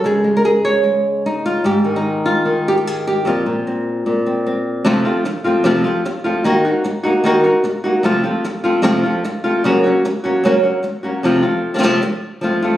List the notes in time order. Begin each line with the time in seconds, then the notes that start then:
0.04 C#3 G#3 G#4
0.24 G#3
0.37 A#4
0.45 G#4
0.65 C#5
0.84 G#3
1.26 D#4
1.46 F4
1.64 G#2 G4
1.84 D#3
1.96 D#4
2.26 F4
2.45 D#3
2.68 G4
2.78 G4
2.87 G#4
3.07 G4
3.25 F2 A#2 C4 F4
3.46 A#2
3.67 C4
4.06 A#2
4.26 C4
4.46 C4
4.85 F2 C3 F3 A3 C4 F4
5.05 F3 A3 C4 F4
5.25 muted nylon-string guitar stroke
5.44 F3 A3 C4 F4
5.64 F2 C3 F3 A3 C4 F4
5.84 F3 A3 C4 F4
6.05 muted nylon-string guitar stroke
6.24 F3 A3 C4 F4
6.44 D#3 A#3 D#4 F#4
6.65 A#3 D#4 F#4
6.84 muted nylon-string guitar stroke
7.03 A#3 D#4 F#4
7.24 D#3 A#3 D#4 F#4
7.44 A#3 D#4 F#4
7.64 muted nylon-string guitar stroke
7.84 A#3 D#4 F#4
8.03 F2 C3 F3 A3 C4 F4
8.24 F3 A3 C4 F4
8.44 muted nylon-string guitar stroke
8.64 F3 A3 C4 F4
8.82 F2 C3 F3 A3 C4 F4
9.03 F3 A3 C4 F4
9.24 muted nylon-string guitar stroke
9.44 F3 A3 C4 F4
9.64 F#2 C#3 F#3 A#3 C#4 F#4
9.84 F#3 A#3 C#4 F#4
10.05 muted nylon-string guitar stroke
10.24 F#3 A#3 C#4 F#4
10.44 F#2 C#3 F#3 A#3 C#4 F#4
10.63 F#3 A#3 C#4 F#4
10.83 muted nylon-string guitar stroke
11.03 F#3 A#3 C#4 F#4
11.23 F2 C3 F3 A3 C4 F4
11.43 F3 A3 C4 F4
11.74 C3 F3 A3 C4 F4
11.78 C3 F3 A3 C4 F4
11.83 F2 C3 F3 A3 C4 F4
12.02 muted nylon-string guitar stroke
12.41 F3 A3 C4 F4
12.62 F3 A3 C4 F4